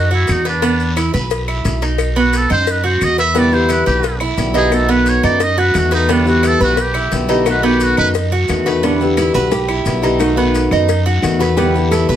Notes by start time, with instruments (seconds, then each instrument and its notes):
Already playing: upright bass F#2, cuban tres D#4, muted trumpet F#4
0.11 muted trumpet E4, cuban tres F#4, maracas
0.27 upright bass E2, muted trumpet D#4, cowbell, short guiro, claves, maracas
0.45 muted trumpet D4, cuban tres B4, cowbell, short guiro, maracas
0.62 cuban tres B3, cowbell, long guiro, maracas
0.80 maracas
0.96 cuban tres E4, cowbell, short guiro, claves, maracas
1.14 upright bass B1, cuban tres B4, short guiro, maracas
1.31 cowbell, long guiro, maracas
1.48 cuban tres E4, claves, maracas
1.65 upright bass B1, cowbell, short guiro, maracas
1.82 cuban tres D#4, cowbell, short guiro, maracas
1.98 cowbell, long guiro, claves, maracas
2.16 cuban tres B3, muted trumpet F#4, maracas
2.33 muted trumpet A4, cowbell, short guiro, maracas
2.50 upright bass F#2, cuban tres D#4, muted trumpet C5, short guiro, claves, maracas
2.67 muted trumpet B4, cowbell, long guiro, maracas
2.84 cuban tres F#4, muted trumpet C5, maracas
3.01 upright bass E2, muted trumpet D#5, cowbell, short guiro, claves, maracas
3.18 cuban tres B4, muted trumpet E5, cowbell, short guiro, maracas
3.34 steel-string acoustic guitar B2 D3 G3 B3 E4, cuban tres B3, cowbell, long guiro, maracas
3.38 muted trumpet D5
3.52 steel-string acoustic guitar D3 G3 B3 E4, muted trumpet C5, maracas
3.69 cuban tres E4, muted trumpet B4, cowbell, short guiro, claves, maracas
3.86 upright bass B1, muted trumpet G4, cuban tres B4, short guiro, maracas
4.03 muted steel-string acoustic guitar stroke, cowbell, long guiro, maracas
4.20 cuban tres E4, claves, maracas
4.37 upright bass B1, steel-string acoustic guitar D3 G3 B3 E4, cowbell, short guiro, maracas
4.54 steel-string acoustic guitar D3 G3 B3 E4, cuban tres D#4, muted trumpet G#4, cowbell, short guiro, maracas
4.70 steel-string acoustic guitar B2 D#3 A3 B3 F#4, muted trumpet A4, cowbell, long guiro, claves, maracas
4.88 steel-string acoustic guitar D#3 A3 B3 F#4, cuban tres B3, muted trumpet B4, maracas
5.06 muted trumpet C#5, cowbell, short guiro, maracas
5.23 upright bass F#2, cuban tres D#4, muted trumpet D5, short guiro, claves, maracas
5.39 muted trumpet D#5, muted steel-string acoustic guitar stroke, cowbell, long guiro, maracas
5.58 cuban tres F#4, muted trumpet B4, maracas
5.74 upright bass E2, steel-string acoustic guitar D#3 A3 B3 F#4, cowbell, short guiro, claves, maracas
5.78 muted trumpet F#4
5.91 steel-string acoustic guitar D#3 A3 B3 F#4, muted trumpet D#4, cuban tres B4, cowbell, short guiro, maracas
6.08 steel-string acoustic guitar B2 D3 G3 B3 E4, cuban tres B3, cowbell, long guiro, maracas
6.12 muted trumpet D4
6.25 steel-string acoustic guitar D3 G3 B3 E4, muted trumpet F#4, maracas
6.43 cuban tres E4, muted trumpet A4, cowbell, short guiro, claves, maracas
6.60 upright bass B1, muted trumpet F#4, cuban tres B4, short guiro, maracas
6.77 muted steel-string acoustic guitar stroke, cowbell, long guiro, maracas
6.82 muted trumpet G4
6.94 cuban tres E4, claves, maracas
7.11 upright bass B1, steel-string acoustic guitar D3 G3 B3 E4, cowbell, short guiro, maracas
7.28 steel-string acoustic guitar D3 G3 B3 E4, cuban tres D#4, cowbell, short guiro, maracas
7.45 steel-string acoustic guitar B2 D#3 A3 B3 F#4, muted trumpet B4, cowbell, long guiro, claves, maracas
7.62 steel-string acoustic guitar D#3 A3 B3 F#4, cuban tres B3, muted trumpet G4, maracas
7.80 muted trumpet F#4, cowbell, short guiro, maracas
7.97 upright bass F#2, cuban tres D#4, muted trumpet B4, short guiro, claves, maracas
8.14 muted steel-string acoustic guitar stroke, cowbell, long guiro, maracas
8.31 cuban tres F#4, maracas
8.48 upright bass E2, steel-string acoustic guitar D#3 A3 B3 F#4, cowbell, short guiro, claves, maracas
8.66 steel-string acoustic guitar D#3 A3 B3 F#4, cuban tres B4, cowbell, short guiro, maracas
8.83 steel-string acoustic guitar B2 D3 G3 B3 E4, cuban tres B3, nylon-string guitar D4, cowbell, long guiro, maracas
9.01 steel-string acoustic guitar D3 G3 B3 E4, maracas
9.17 cuban tres E4, nylon-string guitar E4, cowbell, short guiro, claves, maracas
9.34 upright bass B1, nylon-string guitar F#4, cuban tres B4, short guiro, maracas
9.51 nylon-string guitar G4, muted steel-string acoustic guitar stroke, cowbell, long guiro, maracas
9.68 cuban tres E4, claves, maracas
9.85 upright bass B1, steel-string acoustic guitar D3 G3 B3 E4, cowbell, short guiro, maracas
10.02 steel-string acoustic guitar D3 G3 B3 E4, cuban tres D#4, cowbell, short guiro, maracas
10.19 steel-string acoustic guitar B2 D#3 A3 B3 F#4, nylon-string guitar D#4, cowbell, long guiro, claves, maracas
10.36 steel-string acoustic guitar D#3 A3 B3 F#4, cuban tres B3, maracas
10.54 cowbell, short guiro, maracas
10.71 upright bass F#2, cuban tres D#4, short guiro, claves, maracas
10.88 muted steel-string acoustic guitar stroke, cowbell, long guiro, maracas
11.06 cuban tres F#4, maracas
11.22 upright bass E2, steel-string acoustic guitar D#3 A3 B3 F#4, nylon-string guitar F#4, cowbell, short guiro, claves, maracas
11.39 steel-string acoustic guitar D#3 A3 B3 F#4, cuban tres B4, cowbell, short guiro, maracas
11.56 steel-string acoustic guitar B2 D3 G3 B3 E4, cuban tres B3, nylon-string guitar G4, cowbell, long guiro, maracas
11.74 steel-string acoustic guitar D3 G3 B3 E4, maracas
11.91 cuban tres E4, nylon-string guitar A4, cowbell, short guiro, claves, maracas
12.09 upright bass B1, cuban tres B4, short guiro, maracas